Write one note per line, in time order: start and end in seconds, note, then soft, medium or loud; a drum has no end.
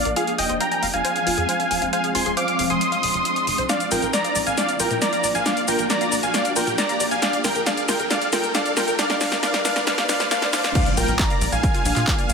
0.00 0.13 F3 medium
0.00 0.13 A#3 medium
0.00 0.13 D4 medium
0.00 riser medium
0.05 0.14 A#1 medium
0.05 0.13 A#4 medium
0.05 closed hi-hat medium
0.16 3.66 F3 medium
0.16 3.66 G#3 medium
0.16 3.66 C4 medium
0.16 0.21 F4 medium
0.16 0.33 G#4 medium
0.16 0.33 F5 medium
0.16 closed hi-hat medium
0.27 closed hi-hat medium
0.38 0.47 F1 loud
0.38 0.43 G#4 medium
0.38 0.55 D#5 medium
0.38 0.55 G5 medium
0.38 open hi-hat loud
0.49 0.58 F1 medium
0.49 0.54 C5 medium
0.49 closed hi-hat medium
0.60 0.63 F5 medium
0.60 0.85 G5 medium
0.60 0.85 A#5 medium
0.60 closed hi-hat medium
0.72 0.76 G#5 medium
0.72 closed hi-hat soft
0.83 0.91 F1 medium
0.83 0.85 F5 loud
0.83 open hi-hat loud
0.94 1.02 F1 medium
0.94 1.84 F5 medium
0.94 1.84 G#5 medium
0.94 closed hi-hat soft
1.05 1.09 C5 medium
1.05 closed hi-hat medium
1.16 1.21 G#4 medium
1.16 closed hi-hat medium
1.27 1.35 F1 medium
1.27 1.32 F4 medium
1.27 open hi-hat loud
1.38 1.46 F2 medium
1.38 1.43 G#4 medium
1.38 closed hi-hat medium
1.49 1.52 C5 medium
1.49 closed hi-hat medium
1.60 1.65 F5 medium
1.60 closed hi-hat soft
1.71 1.79 F1 medium
1.71 1.76 G#5 loud
1.71 open hi-hat loud
1.82 1.90 F1 medium
1.82 1.89 F5 medium
1.82 closed hi-hat soft
1.93 1.98 C5 medium
1.93 2.09 F5 medium
1.93 2.09 G#5 loud
1.93 closed hi-hat medium
2.04 2.09 G#4 medium
2.04 closed hi-hat soft
2.15 2.23 F1 loud
2.15 2.20 F4 medium
2.15 2.31 G#5 medium
2.15 2.31 C6 medium
2.15 open hi-hat loud
2.26 2.35 F1 medium
2.26 2.31 G#4 medium
2.26 closed hi-hat soft
2.37 2.40 C5 medium
2.37 2.61 F5 medium
2.37 2.61 D6 loud
2.37 closed hi-hat medium
2.48 closed hi-hat soft
2.59 2.68 F1 medium
2.59 2.64 F5 loud
2.59 open hi-hat loud
2.70 2.79 F1 medium
2.70 2.77 G#5 medium
2.70 3.61 C6 medium
2.70 3.61 D#6 loud
2.70 closed hi-hat medium
2.81 closed hi-hat medium
2.92 2.95 F5 loud
2.92 closed hi-hat medium
3.03 3.12 D#1 medium
3.03 open hi-hat loud
3.14 3.23 F1 medium
3.14 closed hi-hat soft
3.25 closed hi-hat medium
3.36 closed hi-hat soft
3.47 3.56 F1 medium
3.47 open hi-hat loud
3.58 3.67 C2 medium
3.58 3.66 C5 medium
3.58 closed hi-hat medium
3.69 7.19 F3 medium
3.69 7.19 A#3 medium
3.69 3.74 D4 medium
3.69 7.19 D4 medium
3.69 3.86 D5 medium
3.69 3.86 F5 medium
3.69 snare soft
3.69 closed hi-hat medium
3.69 shaker soft
3.80 closed hi-hat soft
3.80 shaker soft
3.91 4.00 A#1 medium
3.91 3.96 F4 medium
3.91 4.08 A#4 medium
3.91 4.08 G5 medium
3.91 open hi-hat loud
3.91 shaker medium
4.02 4.11 A#1 medium
4.02 4.07 A#4 medium
4.02 closed hi-hat soft
4.02 shaker soft
4.13 4.38 D5 medium
4.13 4.16 D5 medium
4.13 4.38 A#5 medium
4.13 snare soft
4.13 closed hi-hat medium
4.13 shaker soft
4.24 4.29 F5 medium
4.24 closed hi-hat medium
4.24 shaker soft
4.35 4.44 A#1 medium
4.35 4.38 D5 medium
4.35 open hi-hat loud
4.35 shaker medium
4.46 4.55 A#1 medium
4.46 4.56 F5 medium
4.46 4.56 G#5 medium
4.46 closed hi-hat soft
4.46 shaker soft
4.58 4.62 D4 medium
4.58 4.74 D5 medium
4.58 4.74 F5 loud
4.58 snare medium
4.58 closed hi-hat medium
4.58 shaker soft
4.69 closed hi-hat medium
4.69 shaker soft
4.80 4.88 A#1 loud
4.80 4.84 F4 medium
4.80 4.96 A#4 medium
4.80 4.96 G5 medium
4.80 open hi-hat loud
4.80 shaker medium
4.91 4.99 A#2 medium
4.91 4.96 A#4 medium
4.91 closed hi-hat soft
4.91 shaker soft
5.02 5.05 D5 medium
5.02 5.26 D5 medium
5.02 5.26 A#5 medium
5.02 snare medium
5.02 closed hi-hat medium
5.02 shaker soft
5.13 5.18 F5 medium
5.13 closed hi-hat soft
5.13 shaker soft
5.24 5.32 A#1 medium
5.24 5.27 D5 medium
5.24 open hi-hat loud
5.24 shaker medium
5.35 5.43 A#1 medium
5.35 5.44 F5 medium
5.35 5.44 G#5 loud
5.35 closed hi-hat soft
5.35 shaker soft
5.46 5.51 D4 medium
5.46 5.62 D5 medium
5.46 5.62 F5 medium
5.46 snare medium
5.46 closed hi-hat medium
5.46 shaker soft
5.57 closed hi-hat medium
5.57 shaker soft
5.68 5.76 A#1 medium
5.68 5.73 F4 medium
5.68 5.84 A#4 medium
5.68 5.84 G5 medium
5.68 open hi-hat loud
5.68 shaker medium
5.79 5.87 A#1 medium
5.79 5.84 A#4 medium
5.79 closed hi-hat soft
5.79 shaker soft
5.90 5.93 D5 medium
5.90 6.14 D5 medium
5.90 6.14 A#5 medium
5.90 snare medium
5.90 closed hi-hat medium
5.90 shaker soft
6.01 6.06 F5 medium
6.01 closed hi-hat medium
6.01 shaker soft
6.12 6.21 A#1 medium
6.12 6.15 D5 loud
6.12 open hi-hat loud
6.12 shaker medium
6.23 6.32 A#1 medium
6.23 6.32 F5 medium
6.23 6.32 G#5 medium
6.23 closed hi-hat medium
6.23 shaker soft
6.34 6.39 D4 medium
6.34 6.50 D5 medium
6.34 6.50 F5 medium
6.34 snare medium
6.34 closed hi-hat medium
6.34 shaker soft
6.45 closed hi-hat medium
6.45 shaker soft
6.56 6.65 A#1 medium
6.56 6.61 F4 medium
6.56 6.72 A#4 medium
6.56 6.72 G5 medium
6.56 open hi-hat loud
6.56 shaker medium
6.67 6.76 A#2 medium
6.67 6.72 A#4 medium
6.67 closed hi-hat medium
6.67 shaker soft
6.78 6.81 D5 medium
6.78 7.03 D5 medium
6.78 7.03 A#5 loud
6.78 snare medium
6.78 closed hi-hat medium
6.78 shaker soft
6.89 6.94 F5 medium
6.89 closed hi-hat medium
6.89 shaker soft
7.00 7.09 A#1 medium
7.00 7.03 D5 medium
7.00 open hi-hat loud
7.00 shaker medium
7.11 7.20 A#1 medium
7.11 7.21 F5 medium
7.11 7.21 G#5 medium
7.11 closed hi-hat soft
7.11 shaker soft
7.22 10.72 G3 medium
7.22 10.72 A#3 medium
7.22 7.27 D4 medium
7.22 10.72 D#4 medium
7.22 7.39 D5 medium
7.22 7.39 F5 loud
7.22 snare medium
7.22 closed hi-hat medium
7.22 shaker soft
7.33 closed hi-hat medium
7.33 shaker soft
7.44 7.53 D#2 medium
7.44 7.49 F4 medium
7.44 7.61 A#4 medium
7.44 7.61 G5 medium
7.44 snare medium
7.44 open hi-hat loud
7.44 shaker medium
7.55 7.64 D#2 medium
7.55 7.60 A#4 medium
7.55 closed hi-hat medium
7.55 shaker soft
7.66 7.71 D4 medium
7.66 7.83 D5 medium
7.66 7.83 F5 loud
7.66 snare medium
7.66 closed hi-hat medium
7.66 shaker soft
7.77 closed hi-hat medium
7.77 shaker soft
7.88 7.97 D#2 loud
7.88 7.93 F4 medium
7.88 8.05 A#4 medium
7.88 8.05 G5 medium
7.88 snare medium
7.88 open hi-hat loud
7.88 shaker medium
7.99 8.08 D#2 medium
7.99 8.04 A#4 medium
7.99 closed hi-hat medium
7.99 shaker soft
8.11 8.15 D4 medium
8.11 8.27 D5 medium
8.11 8.27 F5 loud
8.11 snare medium
8.11 closed hi-hat medium
8.11 shaker soft
8.22 closed hi-hat medium
8.22 shaker soft
8.33 8.41 D#2 loud
8.33 8.37 F4 medium
8.33 8.49 A#4 medium
8.33 8.49 G5 medium
8.33 snare medium
8.33 open hi-hat loud
8.33 shaker medium
8.44 8.52 D#1 medium
8.44 8.48 A#4 medium
8.44 closed hi-hat medium
8.44 shaker soft
8.55 8.59 D4 medium
8.55 8.71 D5 medium
8.55 8.71 F5 loud
8.55 snare medium
8.55 closed hi-hat medium
8.55 shaker soft
8.66 closed hi-hat medium
8.66 shaker soft
8.77 8.85 D#2 medium
8.77 8.82 F4 medium
8.77 8.93 A#4 medium
8.77 8.93 G5 medium
8.77 snare medium
8.77 open hi-hat loud
8.77 shaker medium
8.88 8.96 D#2 medium
8.88 8.93 A#4 medium
8.88 closed hi-hat medium
8.88 shaker soft
8.99 9.04 D4 medium
8.99 9.15 D5 medium
8.99 9.15 F5 loud
8.99 snare medium
8.99 closed hi-hat medium
8.99 shaker soft
9.10 snare medium
9.10 closed hi-hat medium
9.10 shaker soft
9.21 9.29 D#2 loud
9.21 9.26 D4 medium
9.21 9.37 D5 medium
9.21 9.37 F5 loud
9.21 snare loud
9.21 open hi-hat loud
9.21 shaker medium
9.32 9.40 D#2 medium
9.32 snare medium
9.32 closed hi-hat medium
9.32 shaker soft
9.43 9.48 D4 medium
9.43 9.59 D5 medium
9.43 9.59 F5 loud
9.43 snare medium
9.43 closed hi-hat medium
9.43 shaker soft
9.54 snare medium
9.54 closed hi-hat medium
9.54 shaker soft
9.65 9.73 D#2 medium
9.65 9.70 D4 medium
9.65 9.81 D5 medium
9.65 9.81 F5 loud
9.65 snare loud
9.65 open hi-hat loud
9.65 shaker medium
9.76 9.85 D#2 medium
9.76 snare medium
9.76 closed hi-hat medium
9.76 shaker soft
9.87 9.92 D4 medium
9.87 10.03 D5 medium
9.87 10.03 F5 loud
9.87 snare loud
9.87 closed hi-hat medium
9.87 swell medium
9.87 shaker soft
9.98 snare medium
9.98 closed hi-hat medium
9.98 shaker soft
10.09 10.18 D#2 medium
10.09 10.14 D4 medium
10.09 10.25 D5 medium
10.09 10.25 F5 loud
10.09 snare loud
10.09 open hi-hat loud
10.09 shaker medium
10.20 10.29 D#1 medium
10.20 snare medium
10.20 closed hi-hat medium
10.20 shaker soft
10.31 10.36 D4 medium
10.31 10.47 D5 medium
10.31 10.47 F5 loud
10.31 snare loud
10.31 closed hi-hat medium
10.31 shaker soft
10.42 snare medium
10.42 closed hi-hat medium
10.42 shaker soft
10.53 10.62 D#1 medium
10.53 10.58 D4 medium
10.53 10.69 D5 medium
10.53 10.69 F5 loud
10.53 snare loud
10.53 open hi-hat loud
10.53 shaker medium
10.64 10.73 D#2 medium
10.64 snare loud
10.64 closed hi-hat medium
10.64 shaker soft
10.75 12.33 F3 medium
10.75 12.33 A#3 medium
10.75 10.80 D4 medium
10.75 12.33 D4 medium
10.75 10.91 D5 medium
10.75 10.91 F5 loud
10.75 kick loud
10.75 closed hi-hat medium
10.75 crash loud
10.75 impact medium
10.75 shaker soft
10.86 closed hi-hat medium
10.86 shaker soft
10.97 11.06 A#1 medium
10.97 11.02 F4 medium
10.97 11.14 A#4 medium
10.97 11.14 G5 medium
10.97 open hi-hat loud
10.97 shaker medium
11.08 11.17 A#1 medium
11.08 11.13 A#4 medium
11.08 closed hi-hat medium
11.08 shaker soft
11.19 11.44 D5 medium
11.19 11.22 D5 medium
11.19 11.44 A#5 medium
11.19 11.44 A#5 loud
11.19 kick loud
11.19 clap loud
11.19 closed hi-hat medium
11.19 shaker soft
11.30 11.35 F5 medium
11.30 closed hi-hat medium
11.30 shaker soft
11.41 11.50 A#1 loud
11.41 11.44 D5 loud
11.41 open hi-hat loud
11.41 shaker medium
11.52 11.61 A#1 medium
11.52 12.33 F5 medium
11.52 12.33 G#5 loud
11.52 12.33 G#5 medium
11.52 closed hi-hat medium
11.52 shaker soft
11.63 11.68 A#4 medium
11.63 kick loud
11.63 closed hi-hat medium
11.63 shaker soft
11.74 11.79 F4 medium
11.74 closed hi-hat medium
11.74 shaker soft
11.85 11.94 A#1 medium
11.85 11.90 D4 medium
11.85 open hi-hat loud
11.85 shaker medium
11.96 12.05 A#2 medium
11.96 12.01 F4 medium
11.96 clap soft
11.96 closed hi-hat medium
11.96 shaker soft
12.07 12.11 A#4 medium
12.07 kick loud
12.07 clap loud
12.07 closed hi-hat medium
12.07 shaker soft
12.19 12.23 D5 medium
12.19 closed hi-hat medium
12.19 shaker soft
12.30 12.33 A#1 medium
12.30 12.33 F5 loud
12.30 open hi-hat loud
12.30 shaker medium